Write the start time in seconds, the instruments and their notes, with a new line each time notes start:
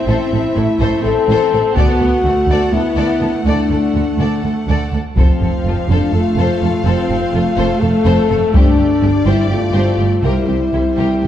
Already playing: viola section C4, violin section E5
0.07 double bass section A1, cello section A2, french horn section E4, violin section A4 C5
0.32 double bass section A1, cello section A2, violin section A4
0.55 double bass section A1, cello section A2, viola section A3, violin section E4 A4
0.80 double bass section A1, cello section A2, violin section A4 C5
1.03 double bass section A1, cello section A2, viola section C4, french horn section A4, violin section A4
1.28 double bass section A1, cello section A2, violin section A4 C5
1.53 double bass section A1, cello section A2, violin section A4
1.76 cello section D2, double bass section D2, viola section B3, french horn section F#4, violin section A4 D5 F#5, taiko
2.00 double bass section D2, cello section D2, violin section A4
2.24 cello section D2, double bass section D2, viola section A3, violin section F#4 A4
2.48 double bass section D2, cello section D2, violin section A4 D5
2.71 cello section D2, double bass section D2, viola section B3, french horn section E4, violin section A4
2.96 double bass section D2, cello section D2, violin section A4 D5
3.21 double bass section D2, cello section D2, violin section A4
3.44 double bass section D2, cello section D2, viola section A3, french horn section D4, violin section A4 D5
3.69 double bass section D2, cello section D2, violin section A4
3.94 double bass section D2, cello section D2, violin section F#4 A4
4.19 cello section D2, double bass section D2, violin section A4 D5
4.43 double bass section D2, cello section D2, violin section A4
4.67 double bass section D2, cello section D2, violin section A4 D5
4.92 double bass section D2, cello section D2, violin section A4
5.16 double bass section F1, cello section F2, viola section F3, french horn section C4, violin section A4 C5 F5, taiko
5.40 double bass section F1, cello section F2, violin section A4
5.65 double bass section F1, cello section F2, violin section F4 A4
5.89 double bass section F1, cello section F2, french horn section D4, violin section A4 C5
6.13 double bass section F1, cello section F2, viola section A3, french horn section F4, violin section A4
6.37 double bass section F1, cello section F2, violin section A4 C5
6.62 double bass section F1, cello section F2, violin section A4
6.85 double bass section F1, cello section F2, viola section C4, french horn section F4, violin section A4 C5
7.09 double bass section F1, cello section F2, violin section A4
7.34 double bass section F1, cello section F2, viola section A3, violin section F4 A4
7.57 double bass section F1, cello section F2, violin section A4 C5
7.81 double bass section F1, cello section F2, french horn section A4, violin section A4
8.05 double bass section F1, cello section F2, violin section A4 C5
8.30 double bass section F1, cello section F2, violin section A4
8.54 double bass section G1, cello section G2, french horn section D4, violin section G4 C5 D5, taiko
8.77 double bass section G1, cello section G2, violin section G4
9.01 double bass section G1, cello section G2, viola section G3, violin section D4 G4
9.25 double bass section G1, cello section G2, french horn section E4, violin section G4 C5
9.49 double bass section G1, cello section G2, viola section A3, french horn section F4, violin section G4
9.73 double bass section G1, cello section G2, violin section G4 C5
9.98 double bass section G1, cello section G2, violin section G4
10.23 double bass section C2, cello section C3, viola section G3, french horn section E4, violin section G4 A#4 C5
10.47 double bass section C2, cello section C3, violin section G4
10.72 double bass section C2, cello section C3, violin section E4 G4
10.97 double bass section C2, cello section C3, violin section G4 A#4
11.21 double bass section C2, cello section C3, violin section G4